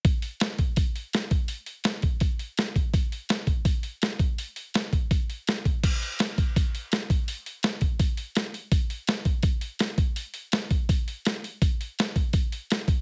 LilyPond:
\new DrumStaff \with { instrumentName = "Drums" } \drummode { \time 4/4 \tempo 4 = 166 <hho bd>8 hho8 <hho sn>8 <hho bd>8 <hho bd>8 hho8 <hho sn>8 <hho bd>8 | hho8 hho8 <hho sn>8 <hho bd>8 <hho bd>8 hho8 <hho sn>8 <hho bd>8 | <hho bd>8 hho8 <hho sn>8 <hho bd>8 <hho bd>8 hho8 <hho sn>8 <hho bd>8 | hho8 hho8 <hho sn>8 <hho bd>8 <hho bd>8 hho8 <hho sn>8 <hho bd>8 |
<cymc hho bd>8 hho8 <hho sn>8 <hho bd>8 <hho bd>8 hho8 <hho sn>8 <hho bd>8 | hho8 hho8 <hho sn>8 <hho bd>8 <hho bd>8 hho8 <hho sn>8 hho8 | <hho bd>8 hho8 <hho sn>8 <hho bd>8 <hho bd>8 hho8 <hho sn>8 <hho bd>8 | hho8 hho8 <hho sn>8 <hho bd>8 <hho bd>8 hho8 <hho sn>8 hho8 |
<hho bd>8 hho8 <hho sn>8 <hho bd>8 <hho bd>8 hho8 <hho sn>8 <hho bd>8 | }